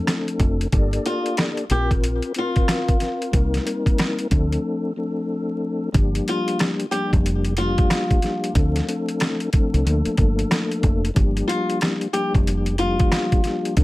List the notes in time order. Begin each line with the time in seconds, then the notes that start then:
Already playing: F3 A3 C4 D4 A4
0.07 cross-stick, snare, closed hi-hat
0.28 closed hi-hat
0.40 F1, kick, closed hi-hat
0.61 closed hi-hat
0.72 G1 A#3 D4 G4 A4 D5, kick, closed hi-hat
0.93 closed hi-hat
1.06 F4, closed hi-hat
1.26 closed hi-hat
1.37 cross-stick, snare, closed hi-hat
1.57 closed hi-hat
1.70 A#1 C4 F4 G4 A#4, closed hi-hat
1.91 kick, closed hi-hat
2.04 closed hi-hat
2.22 closed hi-hat
2.34 C4 F4 A#4, closed hi-hat
2.56 kick, closed hi-hat
2.68 cross-stick, snare, closed hi-hat
2.89 kick, closed hi-hat
2.99 C4 F4 A#4, snare, closed hi-hat
3.22 closed hi-hat
3.32 C2 G3 A#3 C4 D#4 A#4, kick, closed hi-hat
3.54 snare, closed hi-hat
3.64 G3 A#3 C4 D#4 A#4, closed hi-hat
3.86 kick, closed hi-hat
3.98 cross-stick, snare, closed hi-hat
4.19 closed hi-hat
4.30 D2 F3 A3 C4 D4 A4, kick, closed hi-hat
4.52 closed hi-hat
4.96 F3 A3 C4 D4 A4
5.92 G1 F3 G3 A#3 D4 G4, kick, closed hi-hat
6.15 closed hi-hat
6.28 F4, closed hi-hat
6.48 closed hi-hat
6.59 cross-stick, snare, closed hi-hat
6.80 closed hi-hat
6.91 F3 G3 A#3 D4 G4, closed hi-hat
7.13 F1, kick, closed hi-hat
7.26 closed hi-hat
7.45 closed hi-hat
7.57 F3 G3 A#3 D4 F4, closed hi-hat
7.61 G4
7.78 kick, closed hi-hat
7.90 cross-stick, snare, closed hi-hat
8.11 kick, closed hi-hat
8.22 F3 G3 A#3 D4 G4, snare, closed hi-hat
8.44 closed hi-hat
8.55 D2 F3 A3 C4 D4 A4, kick, closed hi-hat
8.76 snare, closed hi-hat
8.87 F3 A3 C4 D4 A4, closed hi-hat
9.09 closed hi-hat
9.20 cross-stick, snare, closed hi-hat
9.40 closed hi-hat
9.53 F3 A3 C4 D4 A4, kick, closed hi-hat
9.74 C2, closed hi-hat
9.85 D2 F3 A3 A#3 D4 A4, closed hi-hat
10.05 muted fingered electric bass stroke, closed hi-hat
10.17 G1 F3 A3 A#3 D4 A4, kick, closed hi-hat
10.39 closed hi-hat
10.51 cross-stick, snare, closed hi-hat
10.72 closed hi-hat
10.83 F1, kick, closed hi-hat
11.05 closed hi-hat
11.14 G1 F3 G3 A#3 D4 G4, kick, closed hi-hat
11.37 closed hi-hat
11.48 F4, closed hi-hat
11.70 closed hi-hat
11.81 cross-stick, snare, closed hi-hat
12.01 closed hi-hat
12.13 F3 G3 A#3 D4 G4, closed hi-hat
12.35 F1, kick, closed hi-hat
12.47 closed hi-hat
12.66 closed hi-hat
12.78 F3 G3 A#3 F4, closed hi-hat
12.82 D4 G4
12.99 kick, closed hi-hat
13.12 cross-stick, snare, closed hi-hat
13.32 kick, closed hi-hat
13.44 F3 G3 A#3 D4 G4, snare, closed hi-hat
13.65 closed hi-hat
13.77 D2 F3 A3 C4 D4 A4, kick, closed hi-hat